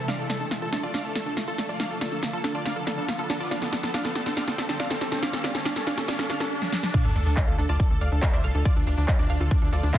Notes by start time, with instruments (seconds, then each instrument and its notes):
Already playing: ambient pad A3, riser
0.08 ambient pad D3 F3 F4, synth arpeggio sound D4, supersaw synth D5 F5, snare, closed hi-hat, cabasa
0.18 supersaw synth A4, synth arpeggio sound A4, closed hi-hat, cabasa
0.30 supersaw synth A4, synth arpeggio sound D5, snare, open hi-hat, cabasa
0.40 synth arpeggio sound D4, supersaw synth A4, closed hi-hat, cabasa
0.51 synth arpeggio sound F5, snare, closed hi-hat, cabasa
0.62 synth arpeggio sound F4, supersaw synth A4, closed hi-hat, cabasa
0.73 synth arpeggio sound D4, supersaw synth A4, snare, open hi-hat, cabasa
0.83 supersaw synth F4 D5, synth arpeggio sound A5, closed hi-hat, cabasa
0.94 synth arpeggio sound D4, supersaw synth D5 F5, snare, closed hi-hat, cabasa
1.05 supersaw synth A4, synth arpeggio sound A4, closed hi-hat, cabasa
1.15 supersaw synth A4, synth arpeggio sound D5, snare, open hi-hat, cabasa
1.26 synth arpeggio sound D4, supersaw synth A4, closed hi-hat, cabasa
1.36 synth arpeggio sound F5, snare, closed hi-hat, cabasa
1.48 synth arpeggio sound F4, supersaw synth A4, closed hi-hat, cabasa
1.58 synth arpeggio sound D4, supersaw synth A4, snare, open hi-hat, cabasa
1.69 supersaw synth F4 D5, synth arpeggio sound A5, closed hi-hat, cabasa
1.79 synth arpeggio sound D4, supersaw synth D5 F5, snare, closed hi-hat, cabasa
1.90 supersaw synth A4, synth arpeggio sound A4, closed hi-hat, cabasa
2.01 supersaw synth A4, synth arpeggio sound D5, snare, open hi-hat, cabasa
2.12 synth arpeggio sound D4, supersaw synth A4, closed hi-hat, cabasa
2.23 synth arpeggio sound F5, snare, closed hi-hat, cabasa
2.33 synth arpeggio sound F4, supersaw synth A4, closed hi-hat, cabasa
2.44 synth arpeggio sound D4, supersaw synth A4, snare, open hi-hat, cabasa
2.55 supersaw synth F4 D5, synth arpeggio sound A5, closed hi-hat, cabasa
2.65 synth arpeggio sound D4, supersaw synth D5 F5, snare, closed hi-hat, cabasa
2.76 synth arpeggio sound A4, supersaw synth A4, closed hi-hat, cabasa
2.87 supersaw synth A4, synth arpeggio sound D5, snare, open hi-hat, cabasa
2.98 synth arpeggio sound D4, supersaw synth A4, closed hi-hat, cabasa
3.08 synth arpeggio sound F5, snare, closed hi-hat, cabasa
3.19 synth arpeggio sound F4, supersaw synth A4, closed hi-hat, cabasa
3.30 synth arpeggio sound D4, supersaw synth A4, snare, open hi-hat, cabasa
3.40 supersaw synth F4 D5, synth arpeggio sound A5, closed hi-hat, cabasa
3.51 ambient pad G3 A#3 G4, synth arpeggio sound D4, supersaw synth D5 F5, snare, closed hi-hat, cabasa
3.62 supersaw synth A4, synth arpeggio sound A4, snare, closed hi-hat, cabasa
3.72 supersaw synth A4, synth arpeggio sound D5, snare, open hi-hat, cabasa
3.83 synth arpeggio sound D4, supersaw synth A4, snare, closed hi-hat, cabasa
3.94 synth arpeggio sound D4, supersaw synth D5 F5, snare, closed hi-hat, cabasa
4.04 synth arpeggio sound A4, supersaw synth A4, snare, closed hi-hat, cabasa
4.15 supersaw synth A4, synth arpeggio sound D5, snare, open hi-hat, cabasa
4.26 synth arpeggio sound D4, supersaw synth A4, snare, closed hi-hat, cabasa
4.37 synth arpeggio sound D4, supersaw synth D5 F5, snare, closed hi-hat, cabasa
4.48 supersaw synth A4, synth arpeggio sound A4, snare, closed hi-hat, cabasa
4.58 supersaw synth A4, synth arpeggio sound D5, snare, open hi-hat, cabasa
4.68 synth arpeggio sound D4, supersaw synth A4, snare, closed hi-hat, cabasa
4.80 synth arpeggio sound D4, supersaw synth D5 F5, snare, closed hi-hat, cabasa
4.90 supersaw synth A4, synth arpeggio sound A4, snare, closed hi-hat, cabasa
5.01 supersaw synth A4, synth arpeggio sound D5, snare, open hi-hat, cabasa
5.12 synth arpeggio sound D4, supersaw synth A4, snare, closed hi-hat, cabasa
5.22 synth arpeggio sound D4, supersaw synth D5 F5, snare, closed hi-hat, cabasa
5.33 supersaw synth A4, synth arpeggio sound A4, snare, closed hi-hat, cabasa
5.44 synth arpeggio sound D4, supersaw synth D5 F5, snare, open hi-hat, cabasa
5.55 supersaw synth A4, synth arpeggio sound A4, snare, closed hi-hat, cabasa
5.65 synth arpeggio sound D4, supersaw synth D5 F5, snare, closed hi-hat, cabasa
5.76 supersaw synth A4, synth arpeggio sound A4, snare, closed hi-hat, cabasa
5.86 synth arpeggio sound D4, supersaw synth D5 F5, snare, open hi-hat, cabasa
5.97 supersaw synth A4, synth arpeggio sound A4, snare, closed hi-hat, cabasa
6.08 synth arpeggio sound D4, supersaw synth D5 F5, snare, closed hi-hat, cabasa
6.19 supersaw synth A4, synth arpeggio sound A4, snare, closed hi-hat, cabasa
6.29 synth arpeggio sound D4, supersaw synth D5 F5, snare, open hi-hat, cabasa
6.40 supersaw synth A4, synth arpeggio sound A4, snare, closed hi-hat, cabasa
6.62 snare
6.72 snare
6.83 snare
6.93 ambient pad D3 F3 A3 F4, synth arpeggio sound D4, supersaw synth D5 F5, kick, closed hi-hat, crash, sub drop, cabasa
7.05 analog synth bass D2, supersaw synth A4, synth arpeggio sound A4, closed hi-hat, cabasa
7.15 analog synth bass D2, supersaw synth A4, synth arpeggio sound D5, open hi-hat, cabasa
7.26 analog synth bass D2, synth arpeggio sound D4, supersaw synth A4, closed hi-hat, cabasa
7.37 synth arpeggio sound F5, kick, clap, closed hi-hat, cabasa
7.48 analog synth bass D2, synth arpeggio sound F4, supersaw synth A4, closed hi-hat, cabasa
7.58 analog synth bass D2, synth arpeggio sound D4, supersaw synth A4, open hi-hat, cabasa
7.69 analog synth bass D2, supersaw synth F4 D5, synth arpeggio sound A5, closed hi-hat, cabasa
7.80 supersaw synth A4, synth arpeggio sound D5, kick, closed hi-hat, cabasa
7.90 analog synth bass D2, synth arpeggio sound A4, supersaw synth A4, closed hi-hat, cabasa
8.01 analog synth bass D2, synth arpeggio sound A4, supersaw synth D5 F5, open hi-hat, cabasa
8.12 analog synth bass D2, synth arpeggio sound D4, supersaw synth A4, closed hi-hat, cabasa
8.22 supersaw synth A4, synth arpeggio sound F5, kick, clap, closed hi-hat, cabasa
8.33 analog synth bass D2, supersaw synth C5 E5, synth arpeggio sound D5, closed hi-hat, cabasa
8.44 analog synth bass C2, supersaw synth A4, synth arpeggio sound F5, open hi-hat, cabasa
8.55 analog synth bass D2, synth arpeggio sound D4, supersaw synth A4, closed hi-hat, cabasa
8.65 supersaw synth F4 D5, synth arpeggio sound D5, kick, closed hi-hat, cabasa
8.76 analog synth bass D2, supersaw synth D4, synth arpeggio sound A4, closed hi-hat, cabasa
8.87 analog synth bass D2, supersaw synth D4, synth arpeggio sound F5, open hi-hat, cabasa
8.97 analog synth bass D2, synth arpeggio sound D4, supersaw synth D4, closed hi-hat, cabasa
9.08 synth arpeggio sound F5, kick, clap, closed hi-hat, cabasa
9.19 analog synth bass D2, supersaw synth D4, synth arpeggio sound D6, closed hi-hat, cabasa
9.30 analog synth bass D2, supersaw synth D4, synth arpeggio sound F5, open hi-hat, cabasa
9.40 analog synth bass D2, synth arpeggio sound D4, supersaw synth F4 A4, closed hi-hat, cabasa
9.51 synth arpeggio sound D4, supersaw synth D4, kick, closed hi-hat, cabasa
9.62 analog synth bass D2, supersaw synth D4, synth arpeggio sound A4, closed hi-hat, cabasa
9.73 analog synth bass D2, supersaw synth F4 D5, synth arpeggio sound A4, open hi-hat, cabasa
9.83 analog synth bass D2, synth arpeggio sound D4, supersaw synth D4, closed hi-hat, cabasa
9.94 supersaw synth D4, synth arpeggio sound F5, kick, clap, closed hi-hat, cabasa